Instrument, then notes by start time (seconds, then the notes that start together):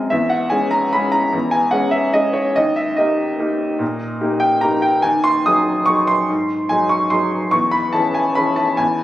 upright piano
Already playing: F#2 G#3 C4 G#4 D#5
0.10 E2 E5
0.30 F#5
0.50 G#3 C#4 G#4 G#5
0.71 A#5
0.93 G#3 C#4 G#4 B5
1.12 A#5
1.33 E2
1.51 G#5
1.71 G#3 C#4 G#4 F#5
1.91 E5
2.13 G#3 C#4 G#4 D#5
2.33 C#5
2.56 D#2 D#5
2.76 E5
2.97 A#3 D#4 G4 D#5
3.39 A#3 D#4 G4
3.79 A#2
4.21 A#3 D#4 G4
4.40 G5
4.61 A#3 D#4 G4 A#5
4.82 G5
5.02 D#2 G#5
5.24 C6
5.46 F#3 D#4 G#4 D#6
5.86 F#3 D#4 G#4 C#6
6.07 C6
6.30 G#2
6.69 F#3 D#4 G#4 G#5
6.89 C#6
7.10 F#3 D#4 G#4 C6
7.51 E2 C#6
7.71 B5
7.93 E3 C#4 G#4 A5
8.14 G#5
8.35 E3 C#4 G#4 B5
8.56 A5
8.77 E2 G#5